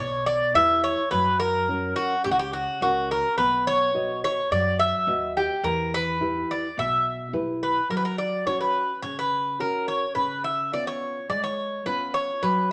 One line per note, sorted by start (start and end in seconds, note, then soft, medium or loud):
0.00 0.38 B1 medium
0.00 0.54 B2 medium
0.00 0.24 C#5 loud
0.26 0.55 D5 loud
0.54 0.94 E2 loud
0.54 1.00 E4 medium
0.54 1.01 G4 soft
0.54 1.01 B4 medium
0.54 0.81 E5 loud
0.84 1.10 C#5 loud
1.11 1.91 F#2 loud
1.11 1.67 F#3 medium
1.11 1.38 B4 loud
1.40 1.95 A#4 medium
1.69 2.14 C#4 medium
1.69 2.14 F#4 soft
1.69 2.14 A#4 medium
1.96 2.24 F#4 medium
2.24 2.65 C#2 medium
2.24 2.80 C#3 medium
2.24 2.31 G4 medium
2.31 2.39 F#4 medium
2.39 2.52 G4 loud
2.53 2.81 F#4 medium
2.81 3.21 C#2 medium
2.81 3.27 C#4 medium
2.81 3.27 F#4 soft
2.81 3.11 F#4 medium
2.81 3.28 A#4 medium
3.11 3.37 A#4 medium
3.38 4.17 B1 loud
3.38 3.93 B3 medium
3.38 3.64 B4 medium
3.67 4.19 C#5 loud
3.94 4.40 F#4 medium
3.94 4.40 B4 medium
3.94 4.40 D#5 medium
4.24 4.50 C#5 medium
4.51 4.91 F#2 medium
4.51 5.06 F#3 medium
4.51 4.79 D5 medium
4.79 5.32 E5 loud
5.07 5.47 D#2 medium
5.07 5.53 F#4 medium
5.07 5.53 B4 soft
5.07 5.53 D#5 medium
5.37 5.63 G4 medium
5.63 6.43 E2 loud
5.63 6.19 E3 medium
5.63 5.93 A#4 medium
5.94 6.51 B4 loud
6.21 6.66 E4 medium
6.21 6.66 G4 medium
6.21 6.66 B4 medium
6.51 6.79 D5 medium
6.77 7.17 B1 medium
6.77 7.32 B2 medium
6.77 7.31 E5 medium
7.33 7.73 B1 loud
7.33 7.79 E4 soft
7.33 7.79 G4 soft
7.33 7.79 B4 medium
7.63 7.90 B4 medium
7.90 8.45 F#3 medium
7.90 7.96 A#4 medium
7.97 8.04 B4 medium
8.05 8.18 A#4 medium
8.18 8.45 D5 medium
8.46 8.92 C#4 medium
8.46 8.92 F#4 soft
8.46 8.60 C#5 medium
8.46 8.92 C#5 medium
8.61 9.00 B4 medium
9.02 9.58 C#3 medium
9.02 9.17 C#5 medium
9.19 9.58 B4 medium
9.59 10.05 C#4 soft
9.59 10.05 F#4 soft
9.59 10.05 A#4 medium
9.59 9.86 A#4 medium
9.88 10.14 C#5 medium
10.15 10.71 C#3 medium
10.15 10.42 B4 medium
10.44 10.73 E5 medium
10.72 11.18 B3 soft
10.72 11.18 C#4 soft
10.72 11.18 F4 medium
10.72 10.87 D5 medium
10.87 11.27 C#5 medium
11.30 11.84 G#3 medium
11.30 11.43 D5 medium
11.44 11.83 C#5 medium
11.85 12.31 B3 soft
11.85 12.31 C#4 soft
11.85 12.32 F4 medium
11.85 12.12 B4 medium
12.14 12.43 C#5 medium
12.43 12.72 F#3 medium
12.43 12.69 B4 medium